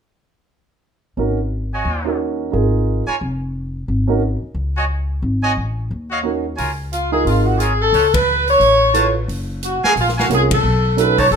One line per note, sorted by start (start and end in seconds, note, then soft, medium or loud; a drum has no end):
1.17 1.82 G#1 medium
1.17 1.36 C#4 soft
1.17 1.37 D#4 soft
1.17 1.37 F#4 soft
1.17 1.37 A#4 medium
1.72 2.17 F#4 medium
1.72 2.17 C#5 medium
1.72 2.17 D#5 medium
1.72 2.17 G#5 medium
1.85 2.49 D#2 medium
2.05 2.50 C#4 soft
2.05 2.50 D#4 soft
2.05 2.50 F#4 soft
2.05 2.51 A#4 medium
2.52 3.04 G#1 medium
2.52 3.03 D#4 soft
2.52 3.03 F4 soft
2.52 3.04 G#4 soft
2.52 3.04 A#4 medium
3.06 3.16 F4 medium
3.06 3.16 A#4 medium
3.06 3.16 C#5 medium
3.06 3.16 G#5 medium
3.06 muted upright bass stroke soft
3.21 3.85 F1 medium
3.88 4.39 G#1 medium
4.07 4.20 C#4 medium
4.07 4.20 D#4 medium
4.07 4.21 F#4 medium
4.07 4.21 A#4 medium
4.42 muted upright bass stroke soft
4.54 5.19 C#2 medium
4.76 4.85 F#4 medium
4.76 4.85 C#5 medium
4.76 4.85 D#5 medium
4.76 4.85 G#5 medium
5.22 5.54 G#1 medium
5.43 5.52 F#4 medium
5.43 5.52 C#5 medium
5.43 5.52 D#5 medium
5.43 5.52 G#5 medium
5.57 5.88 A1 medium
5.91 6.55 D#2 medium
6.11 6.20 F#4 medium
6.11 6.20 C#5 medium
6.11 6.20 D#5 medium
6.11 6.20 F5 medium
6.23 6.43 C#4 soft
6.23 6.43 D#4 soft
6.23 6.43 F#4 soft
6.23 6.44 A#4 soft
6.57 7.23 C#2 medium
6.57 6.72 F4 medium
6.57 6.72 A#4 medium
6.57 6.72 C#5 medium
6.57 6.71 G#5 medium
6.57 open hi-hat soft
6.92 7.12 F4 medium
6.92 closed hi-hat soft
7.12 7.56 D#4 medium
7.12 7.57 F4 medium
7.12 7.25 G#4 medium
7.12 7.57 G#4 medium
7.12 7.57 A#4 medium
7.25 7.89 G#1 medium
7.25 7.45 F4 medium
7.25 open hi-hat soft
7.46 7.59 F#4 medium
7.58 7.73 F4 medium
7.58 7.80 G#4 medium
7.58 7.73 A#4 medium
7.58 7.73 C#5 medium
7.58 7.73 G#5 medium
7.58 closed hi-hat soft
7.82 8.13 A4 medium
7.92 8.57 C#2 medium
7.92 8.07 F4 medium
7.92 8.07 B4 medium
7.92 8.07 C#5 medium
7.92 8.07 A5 medium
7.92 open hi-hat soft
8.14 8.48 B4 medium
8.14 kick medium
8.14 ride medium
8.48 9.13 C#5 loud
8.48 open hi-hat soft
8.60 9.24 A1 medium
8.60 open hi-hat soft
8.94 9.13 E4 soft
8.94 9.08 F4 medium
8.94 9.13 F4 soft
8.94 9.13 A4 soft
8.94 9.09 B4 medium
8.94 9.14 B4 soft
8.94 9.09 C#5 medium
8.94 9.08 A5 medium
8.94 closed hi-hat soft
9.28 9.79 F#1 medium
9.28 open hi-hat soft
9.63 9.83 F#4 medium
9.63 closed hi-hat soft
9.84 9.92 F#4 medium
9.84 9.92 G#4 medium
9.84 9.92 A#4 medium
9.84 9.92 F5 medium
9.84 9.92 G#5 medium
9.84 muted upright bass stroke soft
9.84 snare soft
9.96 10.27 A#1 medium
9.96 open hi-hat soft
10.01 10.09 F4 medium
10.08 snare soft
10.17 10.26 F#4 medium
10.17 10.31 F#4 medium
10.17 10.26 A#4 medium
10.17 10.26 F5 medium
10.17 10.26 G#5 medium
10.17 snare soft
10.29 10.61 C2 medium
10.29 10.48 C#4 medium
10.29 10.49 F4 medium
10.29 10.49 G#4 soft
10.29 10.49 A#4 medium
10.29 closed hi-hat soft
10.35 10.43 G#4 medium
10.51 10.96 A4 medium
10.51 kick medium
10.51 ride medium
10.63 11.28 B1 medium
10.97 11.16 C#4 medium
10.97 11.16 D#4 medium
10.97 11.16 F#4 soft
10.97 11.17 A4 medium
10.97 11.20 B4 medium
10.97 closed hi-hat soft
11.18 11.27 D#4 medium
11.18 11.27 B4 medium
11.18 11.27 C#5 medium
11.18 11.32 C#5 medium
11.18 11.27 A5 medium
11.18 kick soft
11.18 open hi-hat soft
11.31 11.36 F#1 medium
11.31 11.36 A4 medium
11.31 open hi-hat soft